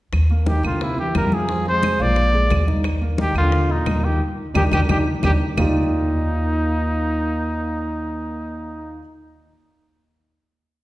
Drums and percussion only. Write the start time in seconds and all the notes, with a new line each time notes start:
0.13 high bongo, high conga, claves
0.30 high conga
0.46 high bongo, high conga
0.64 high conga, claves
0.81 high bongo, high conga
0.98 high conga
1.15 high bongo, low bongo, high conga, claves
1.32 high conga
1.49 high bongo, high conga
1.66 high bongo, high conga
1.83 high bongo, high conga, claves
2.00 high bongo, high conga
2.16 high bongo, high conga
2.33 high bongo, high conga
2.50 high bongo, low bongo, high conga, claves
2.68 high conga
2.84 high bongo, high conga, claves
3.02 high conga
3.18 high bongo, high conga
3.35 high conga, claves
3.52 high bongo, high conga
3.69 high conga
3.86 high bongo, low bongo, high conga, claves
4.55 low bongo, high conga, claves
4.72 low bongo, high conga, claves
4.89 low bongo, high conga, claves
5.23 low bongo, high conga, claves
5.57 low bongo, low conga, claves